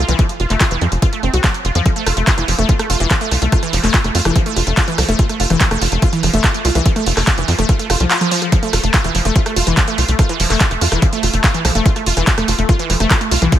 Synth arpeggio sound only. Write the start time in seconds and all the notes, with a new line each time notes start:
0.08 E3
0.19 F3
0.40 F4
0.50 A3
0.61 F4
0.71 E3
0.81 F3
1.02 F4
1.13 A3
1.23 C4
1.34 F#4
1.44 F#3
1.65 F4
1.75 F3
1.86 F3
1.96 A3
2.06 F4
2.17 A3
2.27 F4
2.38 E3
2.48 F3
2.59 A3
2.69 F4
2.79 A3
2.90 F4
3.00 E3
3.11 F3
3.21 A3
3.31 F4
3.42 A3
3.52 F4
3.63 E3
3.73 F3
3.83 A3
3.94 F4
4.04 A3
4.15 F4
4.25 E3
4.36 F3
4.46 A3
4.56 F4
4.67 A3
4.77 F4
4.88 E3
4.98 F3
5.09 A3
5.19 F4
5.29 A3
5.40 F4
5.50 E3
5.61 F3
5.71 A3
5.81 F4
5.92 A3
6.02 F4
6.13 E3
6.23 F3
6.33 A3
6.44 F4
6.54 A3
6.65 F4
6.75 E3
6.86 F3
6.96 A3
7.06 F4
7.17 A3
7.27 F4
7.38 E3
7.48 F3
7.59 A3
7.69 F4
7.79 A3
7.90 F4
8.00 F3
8.11 F4
8.21 F3
8.31 F3
8.42 F3
8.52 F3
8.63 A3
8.73 F4
8.83 A3
8.94 F4
9.04 E3
9.15 F3
9.25 A3
9.36 F4
9.46 A3
9.56 F4
9.67 E3
9.77 F3
9.88 A3
9.98 F4
10.09 A3
10.19 F4
10.29 E3
10.40 F3
10.50 A3
10.61 F4
10.71 A3
10.81 F4
10.92 E3
11.02 F3
11.13 A3
11.23 F4
11.34 A3
11.44 F4
11.54 E3
11.65 F3
11.75 A3
11.86 F4
11.96 A3
12.06 F4
12.17 E3
12.27 F3
12.38 A3
12.48 F4
12.59 A3
12.69 F4
12.79 E3
12.90 F3
13.00 A3
13.11 F4
13.21 A3
13.31 F4
13.42 E3
13.52 F3